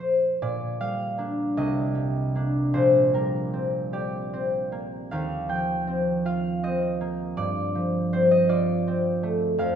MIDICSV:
0, 0, Header, 1, 2, 480
1, 0, Start_track
1, 0, Key_signature, -2, "major"
1, 0, Tempo, 804290
1, 252, Time_signature, 6, 3, 24, 8
1, 723, Tempo, 767263
1, 1683, Tempo, 788436
1, 3123, Tempo, 758534
1, 4083, Tempo, 731707
1, 6133, End_track
2, 0, Start_track
2, 0, Title_t, "Harp"
2, 0, Program_c, 0, 46
2, 0, Note_on_c, 0, 46, 39
2, 0, Note_on_c, 0, 53, 29
2, 0, Note_on_c, 0, 57, 30
2, 0, Note_on_c, 0, 58, 36
2, 0, Note_on_c, 0, 62, 32
2, 0, Note_on_c, 0, 70, 50
2, 0, Note_on_c, 0, 72, 45
2, 221, Note_off_c, 0, 58, 0
2, 241, Note_off_c, 0, 46, 0
2, 250, Note_on_c, 0, 46, 53
2, 252, Note_on_c, 0, 74, 72
2, 258, Note_off_c, 0, 57, 0
2, 268, Note_off_c, 0, 72, 0
2, 480, Note_on_c, 0, 55, 35
2, 481, Note_on_c, 0, 77, 73
2, 699, Note_off_c, 0, 62, 0
2, 704, Note_on_c, 0, 58, 37
2, 708, Note_on_c, 0, 62, 43
2, 948, Note_on_c, 0, 36, 54
2, 951, Note_on_c, 0, 75, 72
2, 962, Note_off_c, 0, 53, 0
2, 979, Note_off_c, 0, 77, 0
2, 983, Note_off_c, 0, 46, 0
2, 1041, Note_off_c, 0, 70, 0
2, 1176, Note_off_c, 0, 55, 0
2, 1184, Note_on_c, 0, 55, 39
2, 1430, Note_off_c, 0, 58, 0
2, 1437, Note_off_c, 0, 62, 0
2, 1437, Note_on_c, 0, 58, 38
2, 1445, Note_on_c, 0, 62, 41
2, 1677, Note_on_c, 0, 34, 53
2, 1679, Note_on_c, 0, 72, 64
2, 1694, Note_off_c, 0, 75, 0
2, 1695, Note_off_c, 0, 36, 0
2, 1914, Note_off_c, 0, 55, 0
2, 1919, Note_on_c, 0, 55, 36
2, 1926, Note_on_c, 0, 70, 58
2, 2162, Note_on_c, 0, 60, 38
2, 2398, Note_off_c, 0, 74, 0
2, 2403, Note_on_c, 0, 67, 46
2, 2406, Note_on_c, 0, 74, 60
2, 2643, Note_off_c, 0, 60, 0
2, 2650, Note_on_c, 0, 60, 45
2, 2878, Note_off_c, 0, 58, 0
2, 2885, Note_on_c, 0, 58, 42
2, 3124, Note_on_c, 0, 77, 66
2, 3129, Note_on_c, 0, 39, 51
2, 3140, Note_off_c, 0, 34, 0
2, 3141, Note_off_c, 0, 74, 0
2, 3144, Note_off_c, 0, 62, 0
2, 3361, Note_on_c, 0, 53, 36
2, 3366, Note_on_c, 0, 79, 70
2, 3597, Note_off_c, 0, 60, 0
2, 3604, Note_on_c, 0, 60, 45
2, 3841, Note_off_c, 0, 77, 0
2, 3846, Note_on_c, 0, 65, 46
2, 3849, Note_on_c, 0, 77, 68
2, 4080, Note_off_c, 0, 60, 0
2, 4086, Note_on_c, 0, 60, 42
2, 4089, Note_on_c, 0, 75, 66
2, 4091, Note_off_c, 0, 72, 0
2, 4324, Note_off_c, 0, 58, 0
2, 4332, Note_on_c, 0, 58, 47
2, 4349, Note_off_c, 0, 55, 0
2, 4357, Note_off_c, 0, 70, 0
2, 4569, Note_on_c, 0, 43, 54
2, 4570, Note_on_c, 0, 74, 69
2, 4588, Note_off_c, 0, 75, 0
2, 4589, Note_off_c, 0, 39, 0
2, 4812, Note_off_c, 0, 53, 0
2, 4820, Note_on_c, 0, 53, 41
2, 4871, Note_off_c, 0, 67, 0
2, 5060, Note_off_c, 0, 60, 0
2, 5066, Note_on_c, 0, 60, 44
2, 5068, Note_on_c, 0, 72, 66
2, 5188, Note_on_c, 0, 75, 66
2, 5296, Note_off_c, 0, 65, 0
2, 5299, Note_off_c, 0, 74, 0
2, 5304, Note_on_c, 0, 65, 52
2, 5307, Note_on_c, 0, 74, 75
2, 5386, Note_off_c, 0, 75, 0
2, 5549, Note_off_c, 0, 60, 0
2, 5556, Note_on_c, 0, 60, 48
2, 5791, Note_on_c, 0, 57, 52
2, 5898, Note_off_c, 0, 79, 0
2, 6017, Note_off_c, 0, 77, 0
2, 6022, Note_on_c, 0, 41, 54
2, 6025, Note_off_c, 0, 43, 0
2, 6026, Note_off_c, 0, 58, 0
2, 6026, Note_on_c, 0, 77, 71
2, 6031, Note_off_c, 0, 74, 0
2, 6133, Note_off_c, 0, 41, 0
2, 6133, Note_off_c, 0, 53, 0
2, 6133, Note_off_c, 0, 57, 0
2, 6133, Note_off_c, 0, 60, 0
2, 6133, Note_off_c, 0, 65, 0
2, 6133, Note_off_c, 0, 72, 0
2, 6133, Note_off_c, 0, 77, 0
2, 6133, End_track
0, 0, End_of_file